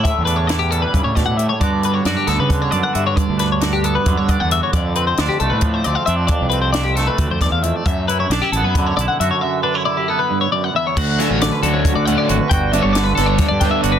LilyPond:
<<
  \new Staff \with { instrumentName = "Clean electric guitar" } { \time 7/8 \key d \major \tempo 4 = 135 e''8 b'16 cis''16 d''16 g'16 a'16 b'8 cis''16 d''16 fis''16 e''16 cis''16 | d''8 b'16 cis''16 d''16 g'16 a'16 b'8 cis''16 d''16 fis''16 e''16 cis''16 | d''8 b'16 cis''16 d''16 g'16 a'16 b'8 cis''16 d''16 fis''16 e''16 cis''16 | d''8 b'16 c''16 d''16 g'16 a'16 b'8 c''16 d''16 f''16 e''16 d''16 |
d''8 b'16 c''16 d''16 g'16 a'16 b'8 c''16 d''16 f''16 e''16 d''16 | e''8 b'16 cis''16 d''16 g'16 a'16 b'8 cis''16 d''16 fis''16 e''16 cis''16 | e''8 b'16 cis''16 d''16 g'16 a'16 b'8 cis''16 d''16 fis''16 e''16 cis''16 | fis''8 e''16 cis''16 d''16 b'16 a'16 cis''8 d''16 fis''16 d''16 cis''16 b'16 |
g''8 e''16 cis''16 d''16 b'16 a'16 cis''8 d''16 g''16 e''16 cis''16 b'16 | }
  \new Staff \with { instrumentName = "Clean electric guitar" } { \time 7/8 \key d \major << { g8 d'8 e'8 g2 | <d b d' fis'>4 fis'8 b4 d'8 fis'8 | r8 d'8 fis'8 b4 d'8 fis'8 | r8 c'8 d'8 a4 c'8 d'8~ |
d'8 c'8 d'8 a2 | r8 e'8 d'16 e'16 b4 e'8 fis'8 | r8 d'16 e'16 e'8 b2 | fis'8 cis'4 fis'4 cis'8 fis'8 |
fis'8 d'4 a'4 d'8 fis'8 | } \\ { <a, d>2 cis8 b,8 a,8 | g,2 d4. | g,2 d4. | f,2 f4. |
f,2 d,8 e,8 f,8 | fis,2 d4. | fis,2 g,8 fis,8 e,8 | d,4 d4. a,4 |
g,4 d4. d4 | } >> }
  \new Staff \with { instrumentName = "Overdriven electric guitar" } { \clef bass \time 7/8 \key d \major r2. r8 | r2. r8 | r2. r8 | r2. r8 |
r2. r8 | r2. r8 | r2. r8 | r8 <d fis a d'>8 r8 <d fis a d'>8 r8 <d fis a d'>8 r8 |
r8 <d g b d'>8 r8 <d g b d'>8 r8 <d g b d'>8 r8 | }
  \new Staff \with { instrumentName = "Fingered electric bass" } { \clef bass \time 7/8 \key d \major r16 e,4.~ e,16 g,16 a,8 a,8 r16 | g,4 fis,16 r16 d,16 cis8. fis,16 r16 g,8 | r16 d,4.~ d,16 fis,16 g,8 e,8 r16 | f,4 d,16 r16 c,16 a,8. d,16 r16 f,8 |
r16 c,4.~ c,16 d,16 f,8 e,8 r16 | fis,4 b,,16 r16 a,,16 fis,8. b,,16 r16 fis,16 r16 | r2. r8 | d,8 r16 a,,8 r16 d,8. d,8 r16 gis,,16 r16 |
g,,8. g,,8. g,,8 r16 g,8 r16 g,,8 | }
  \new DrumStaff \with { instrumentName = "Drums" } \drummode { \time 7/8 <hh bd>8 hh8 <hh sn>8 hh8 <hh bd>8 <hh bd sn>8 hh8 | <hh bd>8 hh8 <hh sn>8 <hh sn>8 <hh bd>8 hh8 hh8 | <hh bd>8 <hh sn>8 <hh sn>8 hh8 <hh bd>8 <hh bd>8 hh8 | <hh bd>8 hh8 <hh sn>8 hh8 <hh bd>8 hh8 hh8 |
<hh bd>8 hh8 <hh sn>8 <hh sn>8 <hh bd>8 <hh bd sn>8 hh8 | <hh bd>8 hh8 <hh sn>8 hh8 <hh bd>8 hh8 hh8 | r4 r4 r4. | <cymc bd>8 <hh sn>8 <hh sn>8 hh8 <hh bd>8 hh8 hh8 |
<hh bd>8 hh8 <hh sn>8 <hh sn>8 <hh bd sn>8 <hh bd sn>8 hh8 | }
>>